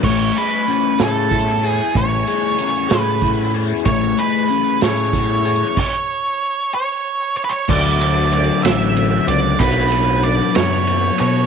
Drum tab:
CC |x-----|------|------|x-----|
RD |------|------|------|------|
HH |-xxxxx|xxxxxx|xxxxxx|------|
SD |---o--|---o--|---o--|------|
BD |o---o-|o---o-|o---o-|o-----|

CC |x-----|------|
RD |-xxxxx|xxxxxx|
HH |------|------|
SD |---o--|---o--|
BD |o-----|o-----|